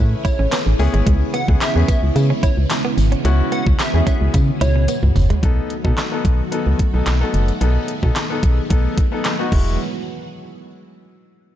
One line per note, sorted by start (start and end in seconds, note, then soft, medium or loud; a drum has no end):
0.00 0.15 A2 loud
0.00 5.39 C#3 medium
0.00 5.39 E3 medium
0.00 0.47 A3 medium
0.00 0.75 A3 medium
0.00 0.47 C#4 medium
0.00 0.47 E4 medium
0.00 0.75 E4 medium
0.00 0.75 G#4 medium
0.00 0.47 B4 medium
0.25 0.33 E4 medium
0.25 0.64 C#5 medium
0.25 kick medium
0.25 closed hi-hat medium
0.25 tambourine medium
0.39 0.47 A1 loud
0.39 0.47 C#4 medium
0.52 0.60 B3 medium
0.52 snare loud
0.52 clap loud
0.52 closed hi-hat loud
0.52 tambourine loud
0.66 0.75 A1 loud
0.66 muted clean electric guitar stroke soft
0.79 0.88 C#2 loud
0.79 5.39 G#3 medium
0.79 1.34 B3 loud
0.79 5.39 B3 medium
0.79 1.34 C#4 medium
0.79 2.95 E4 medium
0.79 1.34 E4 medium
0.79 1.34 G#4 loud
0.79 open hi-hat medium
0.79 tambourine medium
0.94 1.02 G#1 loud
0.94 1.01 G#3 medium
0.94 closed hi-hat soft
1.06 1.24 C#2 loud
1.06 1.15 G#3 loud
1.06 kick loud
1.06 closed hi-hat loud
1.34 1.42 B3 medium
1.34 1.47 F#5 medium
1.34 closed hi-hat medium
1.34 tambourine soft
1.48 1.56 C#2 loud
1.48 1.67 B3 medium
1.48 1.67 C#4 medium
1.48 1.67 E4 medium
1.48 1.67 G#4 medium
1.48 muted clean electric guitar stroke soft
1.48 kick medium
1.61 1.85 E5 medium
1.61 snare loud
1.61 clap loud
1.61 closed hi-hat loud
1.61 tambourine loud
1.75 1.84 E2 loud
1.75 2.52 B3 medium
1.75 2.52 C#4 medium
1.75 2.52 E4 medium
1.75 2.52 G#4 medium
1.88 1.97 B3 medium
1.88 2.01 E5 medium
1.88 kick loud
1.88 closed hi-hat medium
1.88 tambourine medium
2.03 2.11 C#2 medium
2.16 2.33 C#3 loud
2.16 muted clean electric guitar stroke soft
2.16 closed hi-hat loud
2.16 tambourine medium
2.30 2.38 C#4 medium
2.43 2.51 E4 medium
2.43 2.56 C#5 medium
2.43 kick medium
2.43 closed hi-hat medium
2.43 tambourine medium
2.57 2.65 C#2 medium
2.70 snare loud
2.70 clap loud
2.70 closed hi-hat loud
2.70 tambourine loud
2.85 2.92 B3 medium
2.97 3.15 G#1 medium
2.97 5.41 F#4 medium
2.97 muted clean electric guitar stroke soft
2.97 open hi-hat medium
2.97 tambourine medium
3.12 3.19 C#4 medium
3.12 closed hi-hat soft
3.25 3.42 C#2 loud
3.25 3.33 G#3 medium
3.25 3.73 B3 medium
3.25 3.73 C#4 medium
3.25 3.73 E4 medium
3.25 3.73 F#4 loud
3.25 closed hi-hat loud
3.25 tambourine soft
3.52 3.60 B3 medium
3.52 3.65 F#5 medium
3.52 closed hi-hat medium
3.52 tambourine soft
3.67 3.75 C#2 loud
3.67 muted clean electric guitar stroke medium
3.67 kick medium
3.79 4.03 E5 medium
3.79 snare loud
3.79 clap loud
3.79 closed hi-hat loud
3.79 tambourine medium
3.94 4.02 E2 medium
3.94 4.03 B3 medium
3.94 4.03 C#4 medium
3.94 4.03 E4 medium
3.94 4.03 G#4 medium
4.06 4.84 B3 medium
4.06 4.84 C#4 medium
4.06 4.15 C#4 medium
4.06 4.84 E4 medium
4.06 4.84 G#4 medium
4.06 4.19 E5 medium
4.06 kick loud
4.06 closed hi-hat medium
4.06 tambourine medium
4.21 4.29 C#2 medium
4.34 4.51 C#3 loud
4.34 muted clean electric guitar stroke soft
4.34 kick loud
4.34 closed hi-hat loud
4.34 high tom medium
4.34 tambourine medium
4.48 high tom medium
4.61 4.87 C#2 medium
4.61 4.70 E4 medium
4.61 5.00 C#5 medium
4.61 closed hi-hat medium
4.61 mid tom medium
4.61 tambourine medium
4.76 4.83 C#4 medium
4.76 mid tom medium
4.88 4.97 B3 medium
4.88 closed hi-hat loud
4.88 tambourine loud
5.03 5.11 C#2 loud
5.03 muted clean electric guitar stroke medium
5.03 mid tom medium
5.16 5.33 F#1 loud
5.16 floor tom loud
5.16 open hi-hat medium
5.16 tambourine medium
5.30 5.38 G#3 medium
5.30 closed hi-hat soft
5.30 floor tom loud
5.43 5.60 B1 loud
5.43 9.48 D#3 medium
5.43 9.48 F#3 medium
5.43 9.48 A3 medium
5.43 5.72 B3 medium
5.43 9.48 B3 medium
5.43 5.72 D#4 medium
5.43 7.59 F#4 medium
5.43 5.72 A4 loud
5.43 kick loud
5.43 closed hi-hat medium
5.70 closed hi-hat medium
5.84 5.93 B2 loud
5.84 6.03 B3 medium
5.84 6.03 D#4 medium
5.84 6.03 A4 loud
5.84 kick medium
5.97 snare loud
5.97 clap loud
5.97 closed hi-hat medium
6.12 6.40 B3 medium
6.12 6.41 D#4 medium
6.12 6.41 A4 medium
6.25 6.42 B1 medium
6.25 kick loud
6.25 closed hi-hat medium
6.52 6.81 B3 medium
6.52 6.81 D#4 medium
6.52 6.81 A4 loud
6.52 closed hi-hat loud
6.67 6.75 C#2 medium
6.79 kick medium
6.79 closed hi-hat medium
6.93 7.02 B1 medium
6.93 7.12 B3 medium
6.93 7.12 D#4 medium
6.93 7.13 A4 loud
7.06 7.24 B1 medium
7.06 snare loud
7.06 clap loud
7.06 closed hi-hat loud
7.21 7.50 B3 medium
7.21 7.50 D#4 medium
7.21 7.50 A4 loud
7.34 7.51 F#1 medium
7.34 closed hi-hat medium
7.48 closed hi-hat soft
7.61 7.78 B1 loud
7.61 7.90 B3 medium
7.61 7.90 D#4 medium
7.61 9.50 G#4 medium
7.61 7.90 A4 loud
7.61 closed hi-hat loud
7.88 closed hi-hat medium
8.03 8.11 B2 loud
8.03 8.21 B3 medium
8.03 8.22 D#4 medium
8.03 8.22 A4 loud
8.03 kick medium
8.16 snare loud
8.16 clap loud
8.16 closed hi-hat loud
8.30 8.59 B3 medium
8.30 8.59 D#4 medium
8.30 8.59 A4 loud
8.43 8.60 B1 medium
8.43 kick loud
8.43 closed hi-hat medium
8.70 8.88 B1 loud
8.70 8.99 B3 medium
8.70 8.99 D#4 medium
8.70 8.99 A4 loud
8.70 kick medium
8.70 closed hi-hat loud
8.98 kick loud
8.98 closed hi-hat medium
9.12 9.31 B3 medium
9.12 9.31 D#4 medium
9.12 9.31 A4 loud
9.25 snare loud
9.25 clap loud
9.25 closed hi-hat loud
9.39 9.52 B3 medium
9.39 9.52 D#4 medium
9.39 9.51 F#4 loud
9.52 9.77 E1 loud
9.52 9.77 E3 medium
9.52 9.77 F#3 medium
9.52 9.77 G#3 medium
9.52 9.77 B3 medium
9.52 9.77 E4 medium
9.52 9.77 F#4 medium
9.52 kick loud
9.52 crash medium